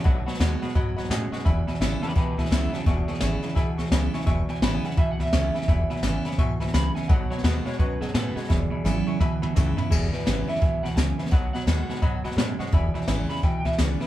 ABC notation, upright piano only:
X:1
M:4/4
L:1/8
Q:"Swing" 1/4=170
K:E
V:1 name="Upright piano"
[dfb] [dfb] [dfb] [dfb] [dfb] [dfb] [dfg] [dfgc'] | [egb] [egb] [egb] [egb] [egb] [egb] [egb] [egb] | [egc'] [egc'] [egc'] [egb] [egb] [egc'] [egb] [egc'] | [egc'] [egb] [egb] [egb] [egb] [egb] [egc'] [egb] |
[egb] [egb] [egb] [egb] [egc'] [egb] [egb] [egb] | [dfb] [dfb] [dfb] [dfb] [dfc'] [dfa] [dfg] [dfb] | [egb] [egb] [egb] [egc'] [egb] [egb] [egc'] [egb] | [egb] [egb] [egb] [egb] [egb] [egb] [egb] [egb] |
[dfb] [dfb] [dfb] [dfb] [dfb] [dfb] [dfb] [dfc'] | [egb] [egb] [egb] [egb] [egb] [egb] [eb] [egb] |]